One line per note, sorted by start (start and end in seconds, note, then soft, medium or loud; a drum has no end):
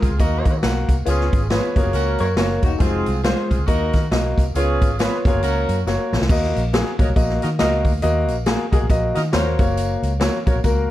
0.02 0.09 C2 medium
0.02 0.16 C4 medium
0.02 0.16 F4 medium
0.02 0.16 G#4 medium
0.02 kick medium
0.02 closed hi-hat medium
0.02 tambourine soft
0.10 0.17 C#2 medium
0.19 0.41 D#2 medium
0.19 0.50 A#3 medium
0.19 0.61 D#4 loud
0.19 0.61 F#4 loud
0.19 0.50 F#4 medium
0.19 0.60 A#4 loud
0.19 0.50 D#5 medium
0.19 kick medium
0.19 closed hi-hat medium
0.19 tambourine medium
0.45 0.60 D#3 medium
0.45 kick medium
0.45 closed hi-hat medium
0.45 tambourine medium
0.63 0.85 B1 medium
0.63 0.94 A#3 medium
0.63 0.94 F#4 medium
0.63 0.94 F#5 medium
0.63 snare loud
0.63 closed hi-hat medium
0.63 tambourine medium
0.89 1.03 C2 medium
0.89 kick medium
0.89 closed hi-hat medium
0.89 tambourine medium
1.05 1.28 C#2 loud
1.05 1.37 B3 medium
1.05 1.48 C#4 loud
1.05 1.37 F4 medium
1.05 1.48 F4 loud
1.05 1.48 G#4 loud
1.05 1.37 C#5 medium
1.05 closed hi-hat medium
1.05 tambourine medium
1.20 snare soft
1.33 1.58 G#1 medium
1.33 kick medium
1.33 closed hi-hat medium
1.33 tambourine medium
1.50 1.77 B3 medium
1.50 1.71 F4 medium
1.50 1.77 F4 medium
1.50 1.71 G#4 medium
1.50 1.71 B4 loud
1.50 1.75 C#5 medium
1.50 snare loud
1.50 closed hi-hat medium
1.50 tambourine medium
1.76 1.83 F#1 medium
1.76 2.27 A#3 medium
1.76 1.91 C#4 medium
1.76 1.90 F4 medium
1.76 2.27 F#4 medium
1.76 1.90 G#4 medium
1.76 2.27 C#5 medium
1.76 kick medium
1.76 closed hi-hat medium
1.76 tambourine soft
1.85 1.92 F#1 medium
1.93 2.16 C#2 medium
1.93 2.34 C#4 loud
1.93 2.35 F#4 loud
1.93 2.35 A#4 loud
1.93 closed hi-hat medium
1.93 tambourine medium
2.18 2.34 F#2 medium
2.18 2.36 A#4 medium
2.18 2.37 C#5 medium
2.18 closed hi-hat medium
2.18 tambourine medium
2.37 2.59 F#1 medium
2.37 2.68 A#3 medium
2.37 2.63 F#4 medium
2.37 2.69 F#4 medium
2.37 2.62 A#4 medium
2.37 2.68 C#5 medium
2.37 snare loud
2.37 closed hi-hat loud
2.37 tambourine medium
2.63 2.78 E1 medium
2.63 3.05 D#4 medium
2.63 3.05 F#4 medium
2.63 kick medium
2.63 closed hi-hat medium
2.63 tambourine medium
2.79 3.02 F1 loud
2.79 3.11 G#3 medium
2.79 3.21 C4 loud
2.79 3.21 F4 loud
2.79 3.12 F4 medium
2.79 3.21 G#4 loud
2.79 3.12 C5 medium
2.79 kick loud
2.79 closed hi-hat medium
2.79 tambourine loud
3.06 3.33 C2 medium
3.06 closed hi-hat medium
3.06 tambourine medium
3.23 3.56 G#3 medium
3.23 3.45 F4 medium
3.23 3.55 F4 medium
3.23 3.45 G#4 loud
3.23 3.45 C5 loud
3.23 3.56 C5 medium
3.23 snare loud
3.23 closed hi-hat medium
3.23 tambourine medium
3.49 3.58 C2 medium
3.49 3.64 C4 medium
3.49 3.64 F4 medium
3.49 3.64 G#4 medium
3.49 kick medium
3.49 closed hi-hat medium
3.49 tambourine medium
3.59 3.66 C#2 medium
3.67 3.90 D#2 loud
3.67 3.99 A#3 medium
3.67 4.08 D#4 loud
3.67 4.08 F#4 loud
3.67 3.99 F#4 medium
3.67 4.09 A#4 loud
3.67 3.98 D#5 medium
3.67 kick medium
3.67 closed hi-hat medium
3.67 tambourine medium
3.93 4.08 D#3 medium
3.93 kick medium
3.93 snare soft
3.93 closed hi-hat medium
3.93 tambourine medium
4.11 4.33 B1 loud
4.11 4.42 A#3 medium
4.11 4.42 F#4 medium
4.11 4.42 D#5 medium
4.11 snare loud
4.11 closed hi-hat medium
4.11 tambourine medium
4.38 4.52 C2 loud
4.38 kick medium
4.38 closed hi-hat medium
4.38 tambourine medium
4.55 4.82 C#2 loud
4.55 4.86 B3 medium
4.55 4.96 C#4 loud
4.55 4.96 F4 loud
4.55 4.86 F4 medium
4.55 4.96 G#4 loud
4.55 4.86 C#5 medium
4.55 closed hi-hat medium
4.55 tambourine loud
4.81 5.07 G#1 loud
4.81 kick medium
4.81 closed hi-hat medium
4.81 tambourine medium
4.98 5.26 B3 medium
4.98 5.19 F4 loud
4.98 5.25 F4 medium
4.98 5.19 G#4 medium
4.98 5.20 B4 loud
4.98 5.25 C#5 medium
4.98 snare loud
4.98 closed hi-hat medium
4.98 tambourine medium
5.25 5.32 F#1 medium
5.25 5.76 A#3 medium
5.25 5.39 C#4 medium
5.25 5.39 F4 medium
5.25 5.76 F#4 medium
5.25 5.39 G#4 medium
5.25 5.76 C#5 loud
5.25 kick loud
5.25 closed hi-hat medium
5.25 tambourine medium
5.34 5.41 F#1 medium
5.42 5.64 C#2 medium
5.42 5.83 C#4 loud
5.42 5.83 F#4 loud
5.42 5.83 A#4 loud
5.42 closed hi-hat medium
5.42 tambourine medium
5.68 5.83 F#2 loud
5.68 closed hi-hat medium
5.68 tambourine medium
5.85 5.96 F#1 medium
5.85 6.17 A#3 medium
5.85 6.17 F#4 medium
5.85 6.17 C#5 medium
5.85 snare medium
5.85 tambourine medium
6.13 6.19 A#1 medium
6.13 snare medium
6.13 tambourine medium
6.21 6.28 C2 medium
6.21 snare medium
6.29 6.51 D#2 loud
6.29 6.61 A#3 loud
6.29 6.60 F#4 medium
6.29 6.61 D#5 loud
6.29 kick loud
6.29 crash loud
6.29 tambourine loud
6.44 snare soft
6.56 6.81 A#1 loud
6.56 closed hi-hat medium
6.56 tambourine medium
6.73 6.89 A#3 medium
6.73 6.89 F#4 medium
6.73 6.90 G#4 medium
6.73 snare loud
6.73 closed hi-hat medium
6.73 tambourine medium
6.99 7.06 A#1 medium
6.99 7.10 A#3 medium
6.99 7.10 F#4 medium
6.99 7.07 F#4 medium
6.99 7.07 A#4 medium
6.99 7.10 C#5 medium
6.99 7.06 D#5 medium
6.99 kick medium
6.99 closed hi-hat medium
6.99 tambourine medium
7.09 7.15 C2 medium
7.16 7.38 A#1 medium
7.16 7.47 A#3 medium
7.16 7.47 F#4 medium
7.16 7.47 D#5 medium
7.16 kick medium
7.16 closed hi-hat medium
7.16 tambourine medium
7.29 snare soft
7.42 7.58 D#3 loud
7.42 7.49 F#4 loud
7.42 7.49 A#4 medium
7.42 7.49 D#5 loud
7.42 snare soft
7.42 closed hi-hat medium
7.42 tambourine medium
7.59 7.82 C#2 medium
7.59 7.90 A#3 medium
7.59 7.92 F#4 medium
7.59 7.90 F#4 medium
7.59 7.92 A#4 medium
7.59 7.90 D#5 medium
7.59 7.93 D#5 loud
7.59 snare loud
7.59 closed hi-hat medium
7.59 tambourine medium
7.84 7.99 D2 loud
7.84 kick medium
7.84 open hi-hat medium
7.84 tambourine medium
8.02 8.30 D#2 loud
8.02 8.34 A#3 loud
8.02 8.34 F#4 loud
8.02 8.33 D#5 loud
8.02 closed hi-hat loud
8.02 tambourine loud
8.28 8.55 A#1 medium
8.28 closed hi-hat medium
8.28 tambourine medium
8.46 8.63 A#3 medium
8.46 8.63 F#4 medium
8.46 8.63 G#4 medium
8.46 snare loud
8.46 closed hi-hat medium
8.46 tambourine medium
8.71 8.80 C2 medium
8.71 8.84 A#3 medium
8.71 8.79 F#4 medium
8.71 8.84 F#4 medium
8.71 8.84 G#4 medium
8.71 8.79 A#4 medium
8.71 8.79 D#5 medium
8.71 kick medium
8.71 closed hi-hat medium
8.71 tambourine medium
8.82 8.89 A#1 medium
8.90 9.12 A#1 medium
8.90 9.21 A#3 medium
8.90 9.21 F#4 medium
8.90 9.21 D#5 loud
8.90 kick medium
8.90 closed hi-hat medium
8.90 tambourine medium
9.14 9.31 D#3 loud
9.14 9.20 F#4 medium
9.14 9.21 A#4 loud
9.14 9.21 D#5 loud
9.14 snare soft
9.14 closed hi-hat medium
9.14 tambourine medium
9.32 9.55 D#2 medium
9.32 9.58 A#3 medium
9.32 9.66 F#4 medium
9.32 9.58 F#4 medium
9.32 9.66 A#4 loud
9.32 9.60 C5 loud
9.32 9.66 C#5 loud
9.32 snare loud
9.32 closed hi-hat loud
9.32 tambourine medium
9.59 9.96 F#1 loud
9.59 10.10 A#3 medium
9.59 10.10 F#4 medium
9.59 10.10 C#5 medium
9.59 kick loud
9.59 closed hi-hat medium
9.59 tambourine medium
9.77 closed hi-hat medium
9.77 tambourine loud
10.02 10.28 C#2 loud
10.02 closed hi-hat medium
10.02 tambourine medium
10.20 10.37 A#3 medium
10.20 10.37 F#4 medium
10.20 10.37 C#5 medium
10.20 snare loud
10.20 closed hi-hat loud
10.20 tambourine medium
10.46 10.54 A#1 loud
10.46 10.57 A#3 medium
10.46 10.58 F#4 medium
10.46 10.55 F#4 medium
10.46 10.55 A#4 medium
10.46 10.58 C#5 medium
10.46 10.55 C#5 medium
10.46 kick loud
10.46 closed hi-hat medium
10.46 tambourine medium
10.54 10.62 A#1 medium
10.64 10.86 C#2 loud
10.64 10.91 A#3 medium
10.64 10.91 F#4 medium
10.64 10.91 A#4 medium
10.64 kick medium
10.64 closed hi-hat medium
10.64 tambourine medium